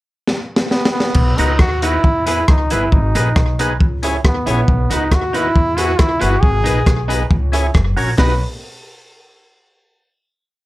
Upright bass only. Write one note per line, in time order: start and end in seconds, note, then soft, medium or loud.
1.15 1.35 B1 loud
1.38 1.56 C#2 medium
1.59 1.97 D#2 medium
2.04 2.41 E2 medium
2.48 2.68 C#2 medium
2.71 2.89 G1 medium
2.92 3.11 G#1 loud
3.15 3.33 A#1 medium
3.36 3.80 B1 medium
3.80 4.17 C#2 medium
4.24 4.43 D#2 medium
4.47 4.65 A#1 medium
4.68 4.87 B1 loud
4.91 5.08 C#2 medium
5.11 5.49 D#2 medium
5.56 5.93 E2 loud
5.99 6.18 C#2 medium
6.22 6.40 G1 loud
6.43 6.62 G#1 loud
6.66 6.84 A#1 medium
6.86 7.24 B1 medium
7.31 7.68 C#2 medium
7.75 7.94 F#1 medium
7.97 8.15 A#1 medium
8.18 8.39 B1 loud